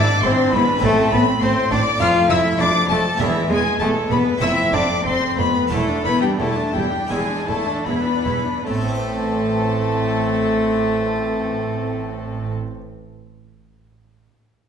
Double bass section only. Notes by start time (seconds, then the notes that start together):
0.23 G#1
0.53 G#1
0.82 A1
1.12 A1
1.42 A1
1.71 A1
2.00 F1
2.30 F1
2.60 F1
2.90 F1
3.20 E1
3.50 E1
3.81 E1
4.11 E1
4.41 F1
4.73 F1
5.06 F1
5.38 F1
5.72 E1
6.06 E1
6.40 E1
6.76 E1
7.12 E1
7.49 E1
7.87 E1
8.27 E1
8.67 A1